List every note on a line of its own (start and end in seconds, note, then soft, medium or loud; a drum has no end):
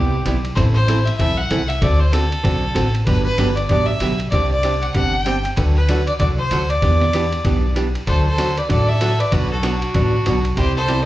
0.00 0.21 C2 medium
0.00 0.14 C3 soft
0.00 0.15 G3 medium
0.00 0.15 B3 medium
0.00 0.15 E4 medium
0.00 0.15 G4 medium
0.00 0.39 G4 medium
0.26 0.52 B1 medium
0.26 0.36 C3 medium
0.26 0.37 G3 medium
0.26 0.37 B3 medium
0.26 0.37 E4 medium
0.26 0.37 G4 medium
0.26 hi-hat pedal medium
0.26 ride medium
0.45 ride soft
0.55 1.07 A1 loud
0.55 0.77 E3 medium
0.55 0.77 A3 medium
0.55 0.77 C4 medium
0.55 0.77 E4 medium
0.55 0.77 A4 medium
0.55 0.64 C5 medium
0.55 kick soft
0.55 ride medium
0.74 1.07 C5 loud
0.88 0.99 E3 medium
0.88 0.99 A3 medium
0.88 0.99 C4 medium
0.88 0.99 E4 medium
0.88 1.00 A4 medium
0.88 hi-hat pedal medium
0.88 ride medium
1.05 1.16 E5 medium
1.05 ride soft
1.17 1.46 B1 medium
1.17 1.39 E3 medium
1.17 1.40 A3 medium
1.17 1.40 C4 medium
1.17 1.40 E4 medium
1.17 1.40 A4 medium
1.17 1.38 E5 loud
1.17 kick soft
1.17 ride medium
1.37 1.70 F#5 loud
1.50 1.77 C2 medium
1.50 1.61 E3 medium
1.50 1.62 A3 medium
1.50 1.62 C4 medium
1.50 1.62 E4 medium
1.50 1.62 A4 medium
1.50 hi-hat pedal medium
1.50 ride medium
1.68 1.83 E5 medium
1.68 ride soft
1.81 2.32 D2 medium
1.81 2.02 D3 medium
1.81 2.02 A3 medium
1.81 2.02 C4 medium
1.81 2.02 F#4 medium
1.81 2.02 A4 medium
1.81 2.01 D5 medium
1.81 kick soft
1.81 ride medium
2.00 2.13 C5 medium
2.12 2.24 D3 medium
2.12 2.24 A3 medium
2.12 2.24 C4 medium
2.12 2.24 F#4 medium
2.12 2.94 A4 medium
2.12 2.24 A4 medium
2.12 hi-hat pedal medium
2.12 ride medium
2.32 ride soft
2.43 2.71 B1 medium
2.43 2.64 D3 medium
2.43 2.64 A3 medium
2.43 2.64 C4 medium
2.43 2.64 F#4 medium
2.43 2.64 A4 medium
2.43 kick soft
2.43 ride medium
2.74 3.02 A1 medium
2.74 2.86 D3 medium
2.74 2.86 A3 medium
2.74 2.86 C4 medium
2.74 2.86 F#4 medium
2.74 2.87 A4 medium
2.74 hi-hat pedal medium
2.74 ride medium
2.95 ride soft
3.05 3.32 G1 medium
3.05 3.27 D3 medium
3.05 3.27 F#3 soft
3.05 3.27 B3 soft
3.05 3.27 D4 medium
3.05 3.27 G4 medium
3.05 3.23 B4 medium
3.05 kick soft
3.05 ride medium
3.24 3.57 B4 loud
3.38 3.65 G1 medium
3.38 3.49 D3 medium
3.38 3.49 F#3 medium
3.38 3.50 B3 medium
3.38 3.50 D4 medium
3.38 3.50 G4 medium
3.38 hi-hat pedal medium
3.38 ride medium
3.56 3.67 D5 medium
3.56 ride soft
3.67 3.96 A1 medium
3.67 3.90 D3 medium
3.67 3.90 F#3 medium
3.67 3.90 B3 medium
3.67 3.90 D4 soft
3.67 3.87 D5 medium
3.67 kick soft
3.67 ride medium
3.71 3.90 G4 medium
3.86 4.18 E5 loud
4.00 4.27 B1 medium
4.00 4.12 D3 medium
4.00 4.12 F#3 medium
4.00 4.12 B3 medium
4.00 4.12 D4 medium
4.00 4.12 G4 medium
4.00 hi-hat pedal soft
4.00 ride medium
4.20 ride soft
4.30 4.82 C2 medium
4.30 4.52 C3 soft
4.30 4.53 G3 soft
4.30 4.53 C4 medium
4.30 4.53 D4 medium
4.30 4.53 G4 medium
4.30 4.49 D5 medium
4.30 kick soft
4.30 ride medium
4.51 4.83 D5 medium
4.63 4.74 C3 medium
4.63 4.74 G3 medium
4.63 4.75 C4 medium
4.63 4.75 D4 medium
4.63 4.75 G4 medium
4.63 hi-hat pedal medium
4.63 ride medium
4.82 4.93 F#5 medium
4.82 ride soft
4.94 5.45 G1 medium
4.94 5.15 C3 medium
4.94 5.15 G3 soft
4.94 5.15 C4 soft
4.94 5.15 D4 medium
4.94 5.15 G4 medium
4.94 5.15 F#5 loud
4.94 kick soft
4.94 ride medium
5.13 5.45 G5 loud
5.26 5.37 C3 medium
5.26 5.37 G3 medium
5.26 5.37 C4 medium
5.26 5.37 D4 medium
5.26 5.37 G4 medium
5.26 hi-hat pedal medium
5.26 ride medium
5.45 ride soft
5.56 6.07 D2 medium
5.56 5.77 D3 soft
5.56 5.78 F#3 medium
5.56 5.78 A3 medium
5.56 5.78 D4 medium
5.56 5.78 F#4 medium
5.56 5.65 B4 medium
5.56 kick soft
5.56 ride medium
5.75 6.05 B4 loud
5.89 6.00 D3 medium
5.89 6.00 F#3 medium
5.89 6.00 A3 medium
5.89 6.00 D4 medium
5.89 6.00 F#4 medium
5.89 hi-hat pedal medium
5.89 ride medium
6.07 6.13 D5 medium
6.07 ride soft
6.19 6.46 C2 medium
6.19 6.40 D3 medium
6.19 6.40 F#3 medium
6.19 6.40 A3 soft
6.19 6.40 D4 medium
6.19 6.41 F#4 medium
6.19 6.28 D5 loud
6.19 kick soft
6.19 ride medium
6.38 6.71 C5 loud
6.51 6.78 D2 medium
6.51 6.62 D3 medium
6.51 6.62 F#3 medium
6.51 6.62 A3 medium
6.51 6.63 D4 medium
6.51 6.63 F#4 medium
6.51 hi-hat pedal medium
6.51 ride medium
6.69 7.76 D5 medium
6.69 ride soft
6.82 7.32 E2 medium
6.82 7.02 E3 soft
6.82 7.03 B3 medium
6.82 7.03 D4 soft
6.82 7.03 G4 medium
6.82 kick soft
6.82 ride medium
7.01 snare soft
7.13 7.25 E3 medium
7.13 7.25 B3 medium
7.13 7.25 D4 medium
7.13 7.25 G4 medium
7.13 hi-hat pedal medium
7.13 ride medium
7.32 ride soft
7.45 7.95 B1 medium
7.45 7.65 E3 soft
7.45 7.65 B3 medium
7.45 7.65 D4 medium
7.45 7.66 G4 medium
7.45 kick soft
7.45 ride medium
7.75 7.87 E3 medium
7.75 7.87 B3 medium
7.75 7.87 D4 medium
7.75 7.87 G4 medium
7.75 hi-hat pedal medium
7.75 ride medium
7.95 ride soft
8.07 8.57 D2 medium
8.07 8.27 D3 soft
8.07 8.28 F#3 medium
8.07 8.27 A3 medium
8.07 8.28 D4 medium
8.07 8.28 F#4 medium
8.07 8.25 A4 medium
8.07 8.25 C5 medium
8.07 kick soft
8.07 ride medium
8.26 8.59 A4 medium
8.26 8.59 C5 medium
8.38 8.49 D3 medium
8.38 8.49 F#3 medium
8.38 8.49 A3 medium
8.38 8.50 D4 medium
8.38 8.50 F#4 medium
8.38 hi-hat pedal medium
8.38 ride medium
8.57 8.68 B4 medium
8.57 8.69 D5 medium
8.57 ride soft
8.69 9.20 A1 medium
8.69 8.89 D3 soft
8.69 8.90 F#3 medium
8.69 8.90 A3 soft
8.69 8.90 D4 medium
8.69 8.90 F#4 medium
8.69 8.89 A4 medium
8.69 8.90 D5 medium
8.69 kick soft
8.69 ride medium
8.89 9.21 A4 medium
8.89 9.21 E5 medium
9.01 9.12 D3 medium
9.01 9.12 F#3 medium
9.01 9.12 A3 medium
9.01 9.12 D4 medium
9.01 9.12 F#4 medium
9.01 hi-hat pedal medium
9.01 ride medium
9.19 9.34 B4 medium
9.19 9.34 D5 medium
9.19 ride soft
9.32 9.82 B1 medium
9.32 9.52 B2 medium
9.32 9.52 F#3 medium
9.32 9.52 B3 soft
9.32 9.53 D4 medium
9.32 9.50 F#4 medium
9.32 9.53 F#4 medium
9.32 9.51 B4 loud
9.32 kick soft
9.32 ride medium
9.51 9.65 F#4 medium
9.51 9.66 A4 medium
9.63 9.74 B2 medium
9.63 9.74 F#3 medium
9.63 9.74 B3 medium
9.63 10.45 D4 medium
9.63 9.74 D4 medium
9.63 9.75 F#4 medium
9.63 10.45 F#4 medium
9.63 hi-hat pedal medium
9.63 ride medium
9.82 ride soft
9.94 10.21 A1 medium
9.94 10.15 B2 soft
9.94 10.15 F#3 medium
9.94 10.15 B3 medium
9.94 10.15 D4 medium
9.94 10.15 F#4 medium
9.94 kick soft
9.94 ride medium
10.26 10.53 B1 medium
10.26 10.37 B2 medium
10.26 10.37 F#3 medium
10.26 10.37 B3 medium
10.26 10.37 D4 medium
10.26 10.38 F#4 medium
10.26 hi-hat pedal soft
10.26 ride medium
10.45 ride soft
10.57 11.05 C2 medium
10.57 10.77 C3 medium
10.57 10.78 G3 medium
10.57 10.78 C4 medium
10.57 10.78 E4 medium
10.57 10.75 G4 medium
10.57 10.78 G4 medium
10.57 10.75 C5 medium
10.57 kick soft
10.57 ride medium
10.76 11.04 A4 medium
10.76 11.04 C5 loud
10.88 10.99 C3 medium
10.88 10.99 G3 medium
10.88 11.00 C4 medium
10.88 11.00 E4 medium
10.88 11.00 G4 medium
10.88 hi-hat pedal medium
10.88 ride medium